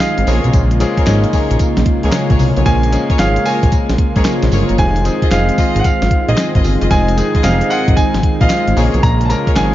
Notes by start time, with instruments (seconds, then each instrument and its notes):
Already playing: analog synth pad D#3 G#3 C4 F4, grand piano F3 G#3 C4 D#4 G#4 F5
0.00 snare, clap, closed hi-hat, tambourine, shaker
0.18 analog synth bass G#1, closed hi-hat, shaker
0.27 analog synth bass A#1, analog synth pad C#3 G#3 A#3 F4, grand piano F3 G#3 A#3 C#4 G#4, string section G#4 A#4 C#5, open hi-hat, tambourine
0.44 analog synth bass B1, closed hi-hat, shaker
0.53 analog synth bass A#1, kick, closed hi-hat, tambourine, shaker
0.71 closed hi-hat, shaker
0.80 grand piano F3 G#3 A#3 C#4 G#4, closed hi-hat, tambourine
0.97 string section G#4 A#4 C#5, kick, closed hi-hat, shaker
1.06 analog synth bass G#1, grand piano F3 G#3 A#3 C#4 D#4, snare, clap, closed hi-hat, tambourine, shaker
1.24 closed hi-hat, shaker
1.33 string section G#4 A#4 C#5, kick, open hi-hat, tambourine, shaker
1.50 analog synth bass A#1, closed hi-hat, shaker
1.59 analog synth bass A#1, kick, closed hi-hat, tambourine, shaker
1.77 analog synth bass A#1, snare, closed hi-hat, shaker
1.86 kick, closed hi-hat
2.03 analog synth bass C#2, grand piano F3 G#3 A#3 C#4 G#4, string section G#4 A#4 C#5, closed hi-hat, shaker
2.12 snare, clap, closed hi-hat, tambourine, shaker
2.30 analog synth bass A#1, string section G#4 A#4 C#5, kick, closed hi-hat, shaker
2.39 analog synth bass C2, open hi-hat, tambourine
2.56 analog synth bass B1, string section G#4 A#4 C#5, closed hi-hat, shaker
2.65 analog synth bass A#1, grand piano F3 G#3 A#3 C#4 G#4 G#5, kick, closed hi-hat, tambourine, shaker
2.83 closed hi-hat, shaker
2.92 grand piano F3 G#3 A#3 C#4 G#4, closed hi-hat, tambourine
3.10 string section G#4 A#4 C#5, kick, closed hi-hat, shaker
3.19 analog synth bass G#1, grand piano F3 G#3 A#3 C#4 G#4 F5, snare, clap, closed hi-hat, tambourine, shaker
3.36 closed hi-hat, shaker
3.45 string section G#4 A#4 C#5, grand piano G#5, open hi-hat, tambourine, shaker
3.63 analog synth bass A#1, kick, closed hi-hat, shaker
3.72 analog synth bass A#1, kick, closed hi-hat, tambourine, shaker
3.89 analog synth bass A#1, snare, closed hi-hat, shaker
3.98 kick, closed hi-hat
4.16 analog synth bass C#2, grand piano F3 G#3 A#3 C#4 G#4, string section G#4 A#4 C#5, kick, closed hi-hat, shaker
4.25 snare, clap, closed hi-hat, tambourine, shaker
4.42 analog synth bass A#1, snare, closed hi-hat, shaker
4.52 analog synth bass G1, string section G#4 A#4 C#5, open hi-hat, tambourine
4.69 analog synth bass F#1, closed hi-hat, shaker
4.78 analog synth bass F1, analog synth pad D#3 C4, grand piano F3 G#3 C4 D#4 G#4 G#5, kick, closed hi-hat, tambourine, shaker
4.96 closed hi-hat, shaker
5.05 grand piano F3 G#3 C4 D#4 G#4, closed hi-hat, tambourine
5.22 string section F4 G#4 D#5, kick, closed hi-hat, shaker
5.31 analog synth bass F1, grand piano F3 G#3 C4 D#4 G#4 F5, snare, clap, closed hi-hat, tambourine, shaker
5.49 closed hi-hat, shaker
5.58 string section F4 G#4 D#5, kick, open hi-hat, tambourine, shaker
5.76 analog synth bass G#1, closed hi-hat, shaker
5.80 grand piano F#5
5.84 analog synth bass G#1, grand piano F5, kick, closed hi-hat, tambourine, shaker
6.02 analog synth bass G#1, snare, closed hi-hat, shaker
6.11 kick, closed hi-hat
6.28 analog synth bass A#1, grand piano F3 G#3 C4 D#4 G#4 D#5, string section F4 G#4 D#5, closed hi-hat, shaker
6.37 snare, clap, closed hi-hat, tambourine, shaker
6.55 analog synth bass G#1, string section F4 G#4 D#5, kick, closed hi-hat, shaker
6.64 analog synth bass G1, open hi-hat, tambourine
6.81 analog synth bass F#1, string section F4 G#4 D#5, closed hi-hat, shaker
6.90 analog synth bass F1, grand piano F3 G#3 C4 D#4 G#4 G#5, analog synth pad D#4, kick, closed hi-hat, tambourine, shaker
7.08 closed hi-hat, shaker
7.17 grand piano F3 G#3 C4 D#4 G#4, closed hi-hat, tambourine
7.34 string section F4 G#4 D#5, kick, closed hi-hat, shaker
7.43 analog synth bass F1, grand piano F3 G#3 C4 D#4 G4 F5, snare, clap, closed hi-hat, tambourine, shaker
7.51 grand piano G#4
7.61 closed hi-hat, shaker
7.70 string section F4 G#4 D#5, grand piano F#5, open hi-hat, tambourine, shaker
7.88 analog synth bass G#1, kick, closed hi-hat, shaker
7.97 analog synth bass G#1, grand piano G#5, kick, closed hi-hat, tambourine, shaker
8.14 analog synth bass G#1, snare, closed hi-hat, shaker
8.23 kick, closed hi-hat
8.41 analog synth bass A#1, grand piano F3 G#3 C4 D#4 F4 F5, string section F4 G#4 D#5, kick, closed hi-hat, shaker
8.50 snare, clap, closed hi-hat, tambourine, shaker
8.68 analog synth bass G#1, closed hi-hat, shaker
8.76 analog synth bass A#1, analog synth pad C#3 A#3 F4, grand piano F3 G#3 A#3 C#4 G#4, string section G#4 A#4 C#5, open hi-hat, tambourine
8.94 analog synth bass B1, closed hi-hat, shaker
9.03 analog synth bass A#1, grand piano A#5, kick, closed hi-hat, tambourine, shaker
9.21 closed hi-hat, shaker
9.25 grand piano A5
9.29 grand piano F3 G#3 A#3 C#4 A#4 A#5, closed hi-hat, tambourine
9.47 string section G#4 A#4 C#5, kick, closed hi-hat, shaker
9.56 analog synth bass G#1, grand piano F3 G#3 A#3 C4 G#4 G#5, snare, clap, closed hi-hat, tambourine, shaker
9.63 grand piano C#4